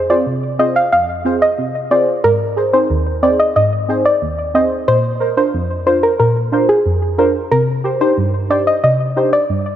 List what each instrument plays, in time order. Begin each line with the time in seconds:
0.09 synth stab C4 F4 G#4 C5, synth pluck D5
0.26 synth stab C3
0.59 synth stab C4 F4 G#4 C5, synth pluck D#5
0.76 synth pluck F5
0.92 synth stab F2, synth pluck F5
1.25 synth stab C4 F4 G#4 C5
1.42 synth pluck D#5
1.58 synth stab C3
1.91 synth stab C4 F4 G#4 C5, synth pluck D5
2.24 synth stab G#2, synth pluck A#4
2.56 synth stab G#4 C5
2.73 synth stab C4 D#4 G#4 C5, synth pluck C5
2.90 synth stab D#2
3.22 synth stab C4 D#4 G#4 C5, synth pluck D5
3.40 synth pluck D#5
3.56 synth stab G#2, synth pluck D#5
3.88 synth stab C4 D#4 G#4 C5
4.05 synth pluck D5
4.22 synth stab D#2
4.54 synth stab C4 D#4 G#4 C5, synth pluck D#5
4.88 synth stab A#2, synth pluck C5
5.20 synth stab A#4 C5
5.37 synth stab D4 F4 A#4 C5, synth pluck C5
5.54 synth stab F2
5.86 synth stab D4 F4 A#4 C5, synth pluck C5
6.03 synth pluck A#4
6.20 synth stab A#2, synth pluck A#4
6.52 synth stab D4 F4 A#4 C5
6.69 synth pluck G#4
6.86 synth stab F2
7.18 synth stab D4 F4 A#4 C5, synth pluck A#4
7.51 synth stab C3, synth pluck A#4
7.84 synth stab G4 C5
8.00 synth stab D4 D#4 G4 C5, synth pluck C5
8.17 synth stab G2
8.50 synth stab D4 D#4 G4 C5, synth pluck D5
8.67 synth pluck D#5
8.84 synth stab C3, synth pluck D#5
9.16 synth stab D4 D#4 G4 C5
9.33 synth pluck D5
9.49 synth stab G2